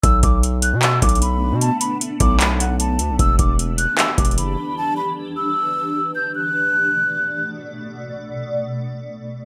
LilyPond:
<<
  \new Staff \with { instrumentName = "Flute" } { \time 4/4 \key b \minor \tempo 4 = 152 e'''8 d'''8 r8 fis'''8 e'''8 d'''8 b''4 | a''8 b''8 r8 d'''8 b''8 fis''8 a''4 | e'''8 d'''8 r8 fis'''8 e'''8 d'''8 b''4 | a''8 b''8 r8 e'''2 g'''8 |
fis'''2. r4 | r1 | }
  \new Staff \with { instrumentName = "Ambient pad" } { \time 4/4 \key b \minor <a b d'>1~ | <a b d'>1 | <e d' g'>1~ | <e d' g'>1 |
<b, a d''>1~ | <b, a d''>1 | }
  \new Staff \with { instrumentName = "808-style bass" } { \clef bass \time 4/4 \key b \minor b,,8 b,,4~ b,,16 b,8. b,,4~ b,,16 b,16~ | b,16 r4 r16 b,,2 d,16 b,,16 | e,,8 e,,4~ e,,16 r8. e,,8 fis,,8 r8 | r1 |
r1 | r1 | }
  \new DrumStaff \with { instrumentName = "Drums" } \drummode { \time 4/4 <hh bd>8 <hh bd>8 hh8 hh8 \tuplet 3/2 { <hc hh>16 r16 r16 <hh bd>16 hh16 hh16 } hh4 | hh8 hh8 hh8 <hh bd>8 <hc hh>8 hh8 hh8 hh8 | <hh bd>8 <hh bd>8 hh8 hh8 \tuplet 3/2 { <hc hh>16 r16 r16 <hh bd>16 hh16 hh16 } hh4 | r4 r4 r4 r4 |
r4 r4 r4 r4 | r4 r4 r4 r4 | }
>>